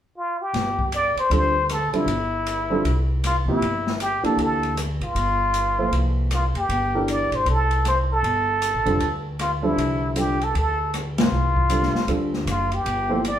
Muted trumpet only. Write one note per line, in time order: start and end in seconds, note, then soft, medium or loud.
0.17 0.43 F4 medium
0.42 0.94 G4 medium
0.94 1.16 D5 medium
1.19 1.31 C5 medium
1.33 1.73 C5 medium
1.72 1.94 A4 medium
1.95 3.06 E4 medium
3.26 3.36 F4 medium
3.50 3.98 E4 medium
4.02 4.24 G4 medium
4.25 4.38 A4 medium
4.42 4.76 A4 medium
5.04 6.05 F4 medium
6.34 6.45 F4 medium
6.57 7.06 G4 medium
7.10 7.37 D5 medium
7.35 7.48 C5 medium
7.50 7.84 A4 medium
7.88 7.98 C5 medium
8.12 9.22 A4 medium
9.41 9.51 F4 medium
9.65 10.19 E4 medium
10.18 10.45 G4 medium
10.44 10.56 A4 medium
10.57 10.92 A4 medium
11.19 12.20 F4 medium
12.50 12.76 F4 medium
12.74 13.25 G4 medium
13.28 13.39 D5 medium